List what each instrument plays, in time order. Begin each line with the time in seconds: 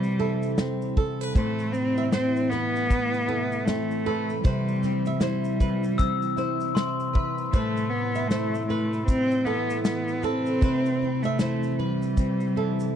Already playing: ambient pad C3 E3 G3 E4, steel-string acoustic guitar C3 C4 E4 B4, cello G3
0.03 shaker
0.19 steel-string acoustic guitar E4, nylon-string guitar A4
0.43 shaker
0.58 steel-string acoustic guitar C4, snare, shaker
0.82 shaker
0.97 nylon-string guitar A4, steel-string acoustic guitar A4, kick
1.21 steel-string acoustic guitar B4, shaker
1.34 steel-string acoustic guitar A2 B4, ambient pad C3 A3, cello A3, nylon-string guitar C5, kick, shaker
1.59 shaker
1.73 cello C4, shaker
1.97 nylon-string guitar E5, shaker
2.12 cello C4, steel-string acoustic guitar E4, nylon-string guitar C5, snare, shaker
2.36 shaker
2.50 cello B3, nylon-string guitar B4, steel-string acoustic guitar B4, shaker
2.76 shaker
2.90 kick, shaker
3.14 shaker
3.29 steel-string acoustic guitar E4, nylon-string guitar A4
3.52 shaker
3.65 cello A3, steel-string acoustic guitar C4, snare, shaker
3.91 shaker
4.06 nylon-string guitar A4, steel-string acoustic guitar B4
4.30 shaker
4.43 steel-string acoustic guitar C3 B4, cello G3, ambient pad G3, nylon-string guitar C5, kick, shaker
4.68 shaker
4.83 steel-string acoustic guitar C4, snare, shaker
5.06 nylon-string guitar E5, shaker
5.20 cello G3, steel-string acoustic guitar E4, nylon-string guitar C5, snare, shaker
5.44 shaker
5.60 nylon-string guitar B4, kick, shaker
5.84 shaker
5.98 steel-string acoustic guitar C4, glockenspiel E6, kick, shaker
6.22 shaker
6.37 steel-string acoustic guitar E4, nylon-string guitar C5, shaker
6.60 shaker
6.75 steel-string acoustic guitar C4, glockenspiel C6, snare, shaker
7.00 shaker
7.13 steel-string acoustic guitar B4, nylon-string guitar E5, kick
7.38 shaker
7.53 steel-string acoustic guitar A2 B4, ambient pad E3 A3, cello A3, nylon-string guitar C5, kick, shaker
7.77 shaker
7.90 cello B3
8.15 nylon-string guitar E5, shaker
8.27 cello A3, steel-string acoustic guitar E4, nylon-string guitar C5, snare, shaker
8.55 shaker
8.68 cello A3, steel-string acoustic guitar B4, nylon-string guitar B4
8.93 shaker
9.07 cello C4, kick, shaker
9.31 shaker
9.45 cello B3, steel-string acoustic guitar E4, nylon-string guitar A4
9.70 shaker
9.85 cello B3, snare, shaker
10.08 shaker
10.23 cello C4, nylon-string guitar A4, steel-string acoustic guitar B4, shaker
10.46 shaker
10.61 steel-string acoustic guitar C3 B4, ambient pad G3, nylon-string guitar C5, kick, shaker
10.86 shaker
11.02 steel-string acoustic guitar C4
11.22 cello A3, nylon-string guitar E5, shaker
11.39 steel-string acoustic guitar E4, nylon-string guitar C5, snare, shaker
11.63 shaker
11.79 cello G3, steel-string acoustic guitar B4, nylon-string guitar B4
12.02 shaker
12.17 steel-string acoustic guitar C4, kick, shaker
12.40 shaker
12.56 steel-string acoustic guitar E4, nylon-string guitar A4
12.80 shaker